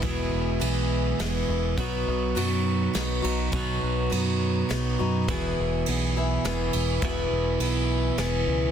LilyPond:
<<
  \new Staff \with { instrumentName = "Steel-string acoustic guitar" } { \time 3/4 \key e \major \tempo 4 = 103 <e, b, e b e' gis'>4 <e b e' gis'>4 <b e' gis'>4 | <b, fis b dis' fis'>4 <fis b dis' fis'>4 <fis b dis' fis'>8 <b dis' fis'>8 | <b, fis b dis' fis'>4 <fis b dis' fis'>4 <fis b dis' fis'>8 <b dis' fis'>8 | <e, b, e b e' gis'>4 <e b e' gis'>8 <e b e' gis'>8 <e b e' gis'>4 |
<e, b, e b e' gis'>4 <e b e' gis'>4 <e b e' gis'>4 | }
  \new Staff \with { instrumentName = "Clean electric guitar" } { \time 3/4 \key e \major <e, b, e gis b gis'>2. | <b, fis b dis' fis'>2. | <b, fis b dis' fis'>2. | <e, b, e b e' gis'>2. |
<e, b, e b e' gis'>2. | }
  \new Staff \with { instrumentName = "Fingered electric bass" } { \clef bass \time 3/4 \key e \major e,,8 e,,8 b,,4 e,,8 e,,8 | b,,8 b,,8 fis,4 b,,8 b,,8 | b,,8 b,,8 fis,4 b,,8 fis,8 | e,,8 e,,8 b,,4 e,,8 e,,8 |
e,,8 e,,8 b,,4 e,,8 cis,8 | }
  \new DrumStaff \with { instrumentName = "Drums" } \drummode { \time 3/4 <bd cymr>4 cymr4 <cymr sn>4 | <bd cymr>4 cymr4 <cymr sn>8 cymr8 | <bd cymr>4 cymr4 <cymr sn>4 | <bd cymr>4 cymr4 <cymr sn>8 cymr8 |
<bd cymr>4 cymr4 <cymr sn>4 | }
>>